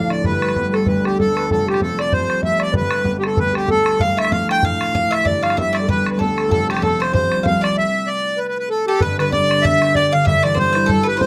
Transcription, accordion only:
0, 0, Header, 1, 2, 480
1, 0, Start_track
1, 0, Tempo, 313152
1, 371, Time_signature, 4, 2, 24, 8
1, 17269, End_track
2, 0, Start_track
2, 0, Title_t, "Accordion"
2, 0, Program_c, 0, 21
2, 0, Note_on_c, 0, 77, 89
2, 172, Note_on_c, 0, 74, 95
2, 177, Note_off_c, 0, 77, 0
2, 375, Note_on_c, 0, 71, 99
2, 384, Note_off_c, 0, 74, 0
2, 1125, Note_on_c, 0, 69, 87
2, 1143, Note_off_c, 0, 71, 0
2, 1340, Note_off_c, 0, 69, 0
2, 1342, Note_on_c, 0, 71, 86
2, 1612, Note_off_c, 0, 71, 0
2, 1616, Note_on_c, 0, 67, 86
2, 1804, Note_off_c, 0, 67, 0
2, 1836, Note_on_c, 0, 69, 102
2, 2300, Note_off_c, 0, 69, 0
2, 2323, Note_on_c, 0, 69, 98
2, 2582, Note_off_c, 0, 69, 0
2, 2592, Note_on_c, 0, 67, 82
2, 2773, Note_off_c, 0, 67, 0
2, 2798, Note_on_c, 0, 69, 96
2, 3054, Note_on_c, 0, 74, 93
2, 3059, Note_off_c, 0, 69, 0
2, 3253, Note_on_c, 0, 72, 103
2, 3263, Note_off_c, 0, 74, 0
2, 3697, Note_off_c, 0, 72, 0
2, 3753, Note_on_c, 0, 76, 110
2, 4013, Note_on_c, 0, 74, 94
2, 4017, Note_off_c, 0, 76, 0
2, 4202, Note_off_c, 0, 74, 0
2, 4235, Note_on_c, 0, 71, 104
2, 4856, Note_off_c, 0, 71, 0
2, 4892, Note_on_c, 0, 67, 77
2, 4958, Note_off_c, 0, 67, 0
2, 5001, Note_on_c, 0, 69, 78
2, 5196, Note_off_c, 0, 69, 0
2, 5202, Note_on_c, 0, 71, 105
2, 5435, Note_off_c, 0, 71, 0
2, 5453, Note_on_c, 0, 67, 89
2, 5662, Note_off_c, 0, 67, 0
2, 5674, Note_on_c, 0, 69, 110
2, 6147, Note_on_c, 0, 77, 114
2, 6155, Note_off_c, 0, 69, 0
2, 6413, Note_off_c, 0, 77, 0
2, 6437, Note_on_c, 0, 76, 101
2, 6615, Note_off_c, 0, 76, 0
2, 6628, Note_on_c, 0, 77, 106
2, 6868, Note_off_c, 0, 77, 0
2, 6918, Note_on_c, 0, 79, 109
2, 7115, Note_off_c, 0, 79, 0
2, 7128, Note_on_c, 0, 77, 127
2, 7865, Note_on_c, 0, 76, 119
2, 7878, Note_off_c, 0, 77, 0
2, 8060, Note_on_c, 0, 74, 110
2, 8069, Note_off_c, 0, 76, 0
2, 8304, Note_off_c, 0, 74, 0
2, 8335, Note_on_c, 0, 77, 99
2, 8544, Note_off_c, 0, 77, 0
2, 8586, Note_on_c, 0, 76, 110
2, 8802, Note_on_c, 0, 74, 94
2, 8833, Note_off_c, 0, 76, 0
2, 9018, Note_off_c, 0, 74, 0
2, 9042, Note_on_c, 0, 71, 112
2, 9356, Note_off_c, 0, 71, 0
2, 9379, Note_on_c, 0, 71, 68
2, 9481, Note_off_c, 0, 71, 0
2, 9504, Note_on_c, 0, 69, 90
2, 9971, Note_off_c, 0, 69, 0
2, 9994, Note_on_c, 0, 69, 110
2, 10233, Note_off_c, 0, 69, 0
2, 10278, Note_on_c, 0, 67, 92
2, 10457, Note_off_c, 0, 67, 0
2, 10473, Note_on_c, 0, 69, 93
2, 10738, Note_off_c, 0, 69, 0
2, 10745, Note_on_c, 0, 72, 88
2, 10919, Note_off_c, 0, 72, 0
2, 10942, Note_on_c, 0, 72, 103
2, 11431, Note_off_c, 0, 72, 0
2, 11446, Note_on_c, 0, 77, 106
2, 11688, Note_on_c, 0, 74, 105
2, 11705, Note_off_c, 0, 77, 0
2, 11902, Note_off_c, 0, 74, 0
2, 11918, Note_on_c, 0, 76, 107
2, 12367, Note_on_c, 0, 74, 98
2, 12400, Note_off_c, 0, 76, 0
2, 12836, Note_on_c, 0, 71, 97
2, 12865, Note_off_c, 0, 74, 0
2, 12978, Note_off_c, 0, 71, 0
2, 13001, Note_on_c, 0, 71, 82
2, 13148, Note_off_c, 0, 71, 0
2, 13171, Note_on_c, 0, 71, 109
2, 13321, Note_off_c, 0, 71, 0
2, 13336, Note_on_c, 0, 69, 102
2, 13573, Note_off_c, 0, 69, 0
2, 13596, Note_on_c, 0, 69, 98
2, 13599, Note_on_c, 0, 67, 79
2, 13797, Note_off_c, 0, 67, 0
2, 13800, Note_on_c, 0, 71, 113
2, 13817, Note_off_c, 0, 69, 0
2, 14056, Note_off_c, 0, 71, 0
2, 14083, Note_on_c, 0, 71, 101
2, 14279, Note_off_c, 0, 71, 0
2, 14286, Note_on_c, 0, 74, 114
2, 14743, Note_on_c, 0, 76, 127
2, 14784, Note_off_c, 0, 74, 0
2, 15253, Note_off_c, 0, 76, 0
2, 15255, Note_on_c, 0, 74, 115
2, 15530, Note_off_c, 0, 74, 0
2, 15535, Note_on_c, 0, 77, 126
2, 15725, Note_off_c, 0, 77, 0
2, 15742, Note_on_c, 0, 76, 127
2, 15987, Note_off_c, 0, 76, 0
2, 16011, Note_on_c, 0, 74, 106
2, 16224, Note_off_c, 0, 74, 0
2, 16232, Note_on_c, 0, 72, 103
2, 16689, Note_on_c, 0, 69, 106
2, 16716, Note_off_c, 0, 72, 0
2, 16967, Note_off_c, 0, 69, 0
2, 16977, Note_on_c, 0, 71, 110
2, 17166, Note_on_c, 0, 72, 100
2, 17187, Note_off_c, 0, 71, 0
2, 17269, Note_off_c, 0, 72, 0
2, 17269, End_track
0, 0, End_of_file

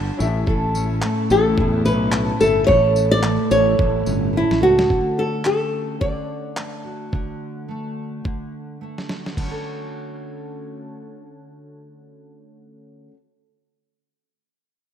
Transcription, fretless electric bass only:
0, 0, Header, 1, 2, 480
1, 0, Start_track
1, 0, Key_signature, 2, "major"
1, 0, Tempo, 553506
1, 414, Time_signature, 4, 2, 24, 8
1, 4735, Tempo, 559180
1, 12867, End_track
2, 0, Start_track
2, 0, Title_t, "Fretless electric bass"
2, 0, Program_c, 0, 35
2, 175, Note_on_c, 0, 33, 105
2, 881, Note_off_c, 0, 33, 0
2, 1134, Note_on_c, 0, 33, 118
2, 1368, Note_on_c, 0, 40, 105
2, 1381, Note_off_c, 0, 33, 0
2, 1611, Note_on_c, 0, 35, 107
2, 1624, Note_off_c, 0, 40, 0
2, 2004, Note_off_c, 0, 35, 0
2, 2091, Note_on_c, 0, 31, 86
2, 2287, Note_off_c, 0, 31, 0
2, 2327, Note_on_c, 0, 33, 126
2, 2921, Note_off_c, 0, 33, 0
2, 3047, Note_on_c, 0, 33, 104
2, 3245, Note_off_c, 0, 33, 0
2, 3287, Note_on_c, 0, 33, 93
2, 3485, Note_off_c, 0, 33, 0
2, 3530, Note_on_c, 0, 31, 100
2, 3846, Note_off_c, 0, 31, 0
2, 3911, Note_on_c, 0, 33, 93
2, 3992, Note_off_c, 0, 33, 0
2, 4007, Note_on_c, 0, 37, 101
2, 4206, Note_off_c, 0, 37, 0
2, 12867, End_track
0, 0, End_of_file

